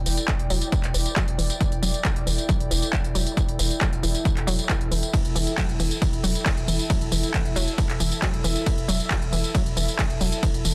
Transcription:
Already playing: ambient pad E4 A4 D5 G5
0.06 sub bass E1, synth arpeggio sound E3, open hi-hat, tambourine
0.17 closed hi-hat, tambourine
0.28 synth arpeggio sound E3, kick, clap, closed hi-hat, tambourine
0.39 sub bass E1, closed hi-hat
0.50 sub bass E1, synth arpeggio sound F#3, open hi-hat, tambourine
0.62 closed hi-hat, tambourine
0.72 synth arpeggio sound E3, kick, closed hi-hat, tambourine
0.84 sub bass E1, clap, closed hi-hat
0.94 sub bass E1, synth arpeggio sound E3, open hi-hat, tambourine
1.06 closed hi-hat, tambourine
1.16 synth arpeggio sound F#3, kick, clap, closed hi-hat, tambourine
1.28 sub bass E1, closed hi-hat
1.38 sub bass E1, synth arpeggio sound E3, open hi-hat, tambourine
1.50 closed hi-hat, tambourine
1.60 synth arpeggio sound E3, kick, closed hi-hat, tambourine
1.72 sub bass E1, closed hi-hat
1.82 sub bass E1, synth arpeggio sound F#3, open hi-hat, tambourine
1.94 closed hi-hat, tambourine
2.05 synth arpeggio sound E3, kick, clap, closed hi-hat, tambourine
2.16 sub bass E1, closed hi-hat
2.27 sub bass E1, synth arpeggio sound E3, open hi-hat, tambourine
2.38 closed hi-hat, tambourine
2.49 synth arpeggio sound F#3, kick, closed hi-hat, tambourine
2.60 sub bass E1, closed hi-hat
2.71 sub bass E1, synth arpeggio sound E3, open hi-hat, tambourine
2.82 closed hi-hat, tambourine
2.93 synth arpeggio sound E3, kick, clap, closed hi-hat, tambourine
3.04 sub bass E1, closed hi-hat
3.15 sub bass E1, synth arpeggio sound F#3, open hi-hat, tambourine
3.27 closed hi-hat, tambourine
3.37 synth arpeggio sound E3, kick, closed hi-hat, tambourine
3.48 sub bass E1, closed hi-hat
3.59 sub bass E1, synth arpeggio sound E3, open hi-hat, tambourine
3.71 closed hi-hat, tambourine
3.81 synth arpeggio sound F#3, kick, clap, closed hi-hat, tambourine
3.92 sub bass E1, closed hi-hat
4.03 sub bass E1, synth arpeggio sound E3, open hi-hat, tambourine
4.15 closed hi-hat, tambourine
4.25 synth arpeggio sound E3, kick, closed hi-hat, tambourine
4.37 sub bass E1, clap, closed hi-hat
4.47 sub bass E1, synth arpeggio sound F#3, open hi-hat, tambourine
4.59 closed hi-hat, tambourine
4.69 synth arpeggio sound E3, kick, clap, closed hi-hat, tambourine
4.81 sub bass E1, closed hi-hat
4.91 sub bass E1, synth arpeggio sound E3, open hi-hat, tambourine
5.03 closed hi-hat, tambourine
5.13 synth arpeggio sound E3, kick, closed hi-hat, ride, tambourine
5.25 sub bass E1, closed hi-hat
5.35 sub bass E1, synth arpeggio sound E3, open hi-hat, tambourine
5.47 closed hi-hat, tambourine
5.58 synth arpeggio sound F#3, kick, clap, closed hi-hat, ride, tambourine
5.69 sub bass E1, closed hi-hat
5.76 ambient pad E5
5.80 sub bass E1, synth arpeggio sound E3, open hi-hat, tambourine
5.91 closed hi-hat, tambourine
6.02 synth arpeggio sound E3, kick, closed hi-hat, ride, tambourine
6.13 sub bass E1, closed hi-hat
6.24 sub bass E1, synth arpeggio sound F#3, open hi-hat, tambourine
6.35 closed hi-hat, tambourine
6.46 synth arpeggio sound E3, kick, clap, closed hi-hat, ride, tambourine
6.57 sub bass E1, closed hi-hat
6.68 sub bass E1, synth arpeggio sound E3, open hi-hat, tambourine
6.79 closed hi-hat, tambourine
6.90 synth arpeggio sound F#3, kick, closed hi-hat, ride, tambourine
7.01 sub bass E1, closed hi-hat
7.12 sub bass E1, synth arpeggio sound E3, open hi-hat, tambourine
7.23 closed hi-hat, tambourine
7.34 synth arpeggio sound E3, kick, clap, closed hi-hat, ride, tambourine
7.45 sub bass E1, closed hi-hat
7.56 sub bass E1, synth arpeggio sound F#3, open hi-hat, tambourine
7.68 closed hi-hat, tambourine
7.78 synth arpeggio sound E3, kick, closed hi-hat, ride, tambourine
7.89 sub bass E1, clap, closed hi-hat
8.00 sub bass E1, synth arpeggio sound E3, open hi-hat, tambourine
8.12 closed hi-hat, tambourine
8.22 synth arpeggio sound F#3, kick, clap, closed hi-hat, ride, tambourine
8.34 sub bass E1, closed hi-hat
8.44 sub bass E1, synth arpeggio sound E3, open hi-hat, tambourine
8.56 closed hi-hat, tambourine
8.66 synth arpeggio sound E3, kick, closed hi-hat, ride, tambourine
8.78 sub bass E1, closed hi-hat
8.88 sub bass E1, synth arpeggio sound F#3, open hi-hat, tambourine
9.00 closed hi-hat, tambourine
9.10 synth arpeggio sound E3, kick, clap, closed hi-hat, ride
9.22 sub bass E1, closed hi-hat
9.32 sub bass E1, synth arpeggio sound E3, open hi-hat, tambourine
9.44 closed hi-hat, tambourine
9.54 synth arpeggio sound F#3, kick, closed hi-hat, ride, tambourine
9.66 sub bass E1, closed hi-hat
9.76 sub bass E1, synth arpeggio sound E3, open hi-hat, tambourine
9.88 closed hi-hat, tambourine
9.99 synth arpeggio sound E3, kick, clap, closed hi-hat, ride, tambourine
10.10 sub bass E1, closed hi-hat
10.21 sub bass E1, synth arpeggio sound F#3, open hi-hat, tambourine
10.32 closed hi-hat, tambourine
10.43 synth arpeggio sound E3, kick, closed hi-hat, ride, tambourine
10.54 sub bass E1, closed hi-hat
10.65 sub bass E1, synth arpeggio sound E3, open hi-hat, tambourine

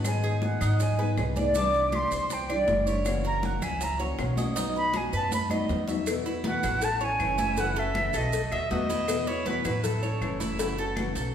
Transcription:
Already playing: upright bass G#2, cuban tres B4
0.03 nylon-string guitar D#3 G#3 B3 D#4 G#4, flute G#5, high bongo, high conga, claves, maracas
0.23 cuban tres G#4, high conga, maracas
0.42 flute F#5, high bongo, high conga, maracas
0.61 upright bass G#2, cuban tres D#4, high conga, low conga, claves, maracas
0.80 flute G#5, muted nylon-string guitar stroke, high bongo, high conga, maracas
0.99 nylon-string guitar G#3 B3 D#4 G#4, cuban tres B4, high conga, maracas
1.17 upright bass C2, nylon-string guitar G#3 B3 D#4 G#4, high bongo, low bongo, high conga, claves, maracas
1.36 nylon-string guitar G#3 B3 D#4 G#4, cuban tres D5, high conga, maracas
1.54 nylon-string guitar C3 E3 G3 D4 E4, cuban tres D4, flute D6, high bongo, high conga, maracas
1.73 high bongo, high conga, maracas
1.92 cuban tres G4, flute C6, high bongo, high conga, claves, maracas
2.11 upright bass C2, cuban tres C5, high bongo, high conga, maracas
2.30 flute G5, muted nylon-string guitar stroke, high bongo, high conga, maracas
2.49 nylon-string guitar E3 G3 D4 E4, cuban tres D5, high conga, claves, maracas
2.68 upright bass F#1, nylon-string guitar E3 G3 D4 E4, high bongo, low bongo, high conga, maracas
2.87 nylon-string guitar E3 G3 D4 E4, cuban tres C#5, high bongo, maracas
3.05 nylon-string guitar C#3 E3 A#3 C#4 F#4, high bongo, high conga, claves, maracas
3.24 cuban tres A#4, flute A#5, high conga, maracas
3.43 flute F#5, high bongo, high conga, maracas
3.62 upright bass C#2, cuban tres E4, flute G#5, high conga, low conga, claves, maracas
3.81 flute A#5, muted nylon-string guitar stroke, high bongo, high conga, maracas
3.99 nylon-string guitar E3 A#3 C#4 F#4, cuban tres C#5, high conga, maracas
4.18 upright bass B1, nylon-string guitar E3 A#3 C#4 F#4, high bongo, low bongo, high conga, claves, maracas
4.37 nylon-string guitar E3 A#3 C#4 F#4, cuban tres D#5, high conga, maracas
4.55 nylon-string guitar B2 F#3 B3 D#4 F#4, cuban tres D#4, high bongo, high conga, maracas
4.75 flute B5, high bongo, high conga, maracas
4.94 cuban tres F#4, flute G#5, high bongo, high conga, claves, maracas
5.13 upright bass F#2, cuban tres B4, flute A5, high bongo, high conga, maracas
5.31 flute B5, muted nylon-string guitar stroke, high bongo, high conga, maracas
5.50 nylon-string guitar F#3 B3 D#4 F#4, cuban tres D#5, high conga, claves, maracas
5.69 upright bass E2, nylon-string guitar F#3 B3 D#4 F#4, high bongo, low bongo, low conga, maracas
5.88 nylon-string guitar F#3 B3 D#4 F#4, cuban tres E5, high bongo, low conga, maracas
6.07 nylon-string guitar B2 E3 B3 E4 F#4, cowbell, high conga, claves, maracas
6.25 nylon-string guitar B3 E4 F#4, cuban tres E4, high conga, maracas
6.44 nylon-string guitar B2 E3 B3 E4 F#4, cuban tres B4, flute F#5, cowbell, high conga, maracas
6.62 upright bass A1, nylon-string guitar B3 E4 F#4, cuban tres E4, cowbell, high conga, low conga, claves, maracas
6.82 flute A5, muted nylon-string guitar stroke, cowbell, high conga, maracas
7.01 nylon-string guitar A3 C#4 E4, cuban tres C#5, flute G#5, high conga, maracas
7.19 upright bass F#1, nylon-string guitar E3 A3 C#4 E4, cowbell, high conga, claves, maracas
7.38 cuban tres E4, cowbell, high conga, maracas
7.57 nylon-string guitar C#3 E3 A3 C#4 F#4, cuban tres E4, flute F#5, cowbell, high conga, maracas
7.76 nylon-string guitar A3 C#4 F#4, cuban tres A4, flute E5, high conga, maracas
7.95 nylon-string guitar C#3 E3 A3 C#4 F#4, cowbell, high conga, claves, maracas
8.13 upright bass B1, nylon-string guitar A3 C#4 F#4, cuban tres A4, flute D#5, cowbell, high conga, maracas
8.33 muted nylon-string guitar stroke, cowbell, high conga, maracas
8.51 upright bass D#2, nylon-string guitar A3 B3 F#4, cuban tres D#5, trumpet E5, high conga, claves, maracas
8.70 upright bass E2, nylon-string guitar B2 D#3 A3 B3 F#4, cuban tres F#4, trumpet D#5, cowbell, high conga, maracas
8.89 cuban tres E4, cowbell, high conga, maracas
9.07 nylon-string guitar B2 E3 B3 E4 F#4, cowbell, high conga, claves, maracas
9.26 nylon-string guitar B3 E4 F#4, cuban tres E4, trumpet C#5, high conga, maracas
9.46 nylon-string guitar B2 E3 B3 E4 F#4, cuban tres B4, trumpet B4, cowbell, high conga, maracas
9.65 upright bass A1, nylon-string guitar B3 E4 F#4, cuban tres E4, cowbell, high conga, low conga, claves, maracas
9.83 trumpet A4, muted nylon-string guitar stroke, cowbell, high conga, low conga, maracas
10.02 nylon-string guitar A3 C#4 E4, cuban tres C#5, high conga, maracas
10.21 upright bass F#1, nylon-string guitar E3 A3 C#4 E4, cowbell, high conga, claves, maracas
10.40 cuban tres E4, cowbell, high conga, maracas
10.59 nylon-string guitar C#3 E3 A3 C#4 F#4, cuban tres E4, cowbell, high conga, maracas
10.77 nylon-string guitar A3 C#4 F#4, cuban tres A4, high conga, maracas
10.96 nylon-string guitar C#3 E3 A3 C#4 F#4, cowbell, high conga, claves, maracas
11.15 upright bass B1, nylon-string guitar A3 C#4 F#4, cuban tres A4, cowbell, high conga, maracas

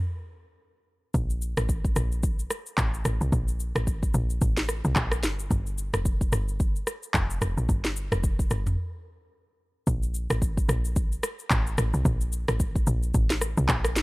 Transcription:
1.14 log drum bass A#1, kick, shaker
1.30 shaker
1.42 shaker
1.57 log drum bass A1, cross-stick, shaker
1.69 kick, shaker
1.85 kick, shaker
1.96 log drum bass A#1, cross-stick, shaker
2.12 shaker
2.23 kick, shaker
2.39 shaker
2.50 cross-stick, shaker
2.66 shaker
2.78 log drum bass A1, kick, clap, shaker
2.94 shaker
3.05 log drum bass A1, cross-stick, shaker
3.21 log drum bass C2, shaker
3.32 log drum bass A#1, kick, shaker
3.48 shaker
3.60 shaker
3.75 log drum bass A1, cross-stick, shaker
3.87 kick, shaker
4.03 kick, shaker
4.14 log drum bass A#1, shaker
4.30 shaker
4.41 log drum bass A1, kick, shaker
4.57 snare, shaker
4.69 cross-stick, shaker
4.85 log drum bass C2, shaker
4.96 log drum bass A#1, kick, clap, shaker
5.12 cross-stick, shaker
5.23 log drum bass G1, snare, shaker
5.39 shaker
5.51 log drum bass G1, kick, shaker
5.66 shaker
5.78 shaker
5.94 log drum bass F1, cross-stick, shaker
6.05 kick, shaker
6.21 kick, shaker
6.32 log drum bass G1, cross-stick, shaker
6.48 shaker
6.60 kick, shaker
6.76 shaker
6.87 cross-stick, shaker
7.03 shaker
7.14 log drum bass F1, kick, clap, shaker
7.30 shaker
7.42 log drum bass F1, cross-stick, shaker
7.57 log drum bass A#1, shaker
7.69 log drum bass G1, kick, shaker
7.85 snare, shaker
7.96 shaker
8.12 log drum bass F1, cross-stick, shaker
8.24 kick, shaker
8.39 kick, shaker
8.51 log drum bass G1, cross-stick, shaker
8.67 mid tom, shaker
9.87 log drum bass A#1, kick, shaker
10.03 shaker
10.14 shaker
10.30 log drum bass A1, cross-stick, shaker
10.42 kick, shaker
10.57 kick, shaker
10.69 log drum bass A#1, cross-stick, shaker
10.85 shaker
10.96 kick, shaker
11.12 shaker
11.23 cross-stick, shaker
11.39 shaker
11.51 log drum bass A1, kick, clap, shaker
11.67 shaker
11.78 log drum bass A1, cross-stick, shaker
11.94 log drum bass C2, shaker
12.05 log drum bass A#1, kick, shaker
12.21 shaker
12.32 shaker
12.48 log drum bass A1, cross-stick, shaker
12.60 kick, shaker
12.76 kick, shaker
12.87 log drum bass A#1, shaker
13.03 shaker
13.14 log drum bass A1, kick, shaker
13.30 snare, shaker
13.41 cross-stick, shaker
13.57 log drum bass C2, shaker
13.69 log drum bass A#1, kick, clap, shaker
13.85 cross-stick, shaker
13.96 log drum bass G1, snare, shaker

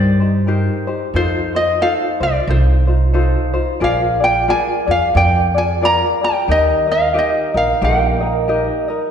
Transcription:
Already playing: upright bass G2, ukulele D#4 G4 A#4 C5 D5
0.20 ukulele D#4 G4 C5
0.47 ukulele D#4 G4 A#4 C5
0.87 ukulele D#4 G4 C5
1.14 upright bass F2, ukulele D#4 F4 A4 C5
1.55 ukulele D#4 F4 C5 D#5
1.81 ukulele D#4 F4 A4 C5 F5
2.20 upright bass C2, ukulele D#4 F4 C5 D5
2.47 upright bass C2, ukulele D#4 F4 A4 C5
2.87 ukulele D#4 F4 C5
3.13 ukulele D#4 F4 A4 C5
3.54 ukulele D#4 F4 C5
3.80 upright bass A#1, ukulele F4 G#4 A#4 D5 F5
4.20 ukulele F4 G#4 D5 G5
4.48 ukulele F4 G#4 A#4 D5 G#5
4.86 upright bass F2, ukulele F4 G#4 D5
4.91 ukulele F5
5.14 upright bass F2, ukulele F4 G#4 A#4 D5 G5
5.54 ukulele F4 G#4 D5 G#5
5.81 ukulele F4 G#4 A#4 D5 A#5
6.21 ukulele F4 G#4 D5 G5
6.48 upright bass D#2, ukulele D#4 G4 A#4 D#5
6.87 ukulele D#4 A#4 D#5
6.92 ukulele F5
7.14 ukulele D#4 G4 A#4 D#5
7.19 ukulele D#5
7.54 upright bass A#1, ukulele D#4 A#4 D#5 F5
7.81 upright bass A#1, steel-string acoustic guitar A#3, ukulele D#4 G4 A#4 D#5 G5
8.20 ukulele D#4 A#4 D#5
8.48 ukulele D#4 G4 A#4 D#5
8.88 ukulele D#4 A#4 D#5

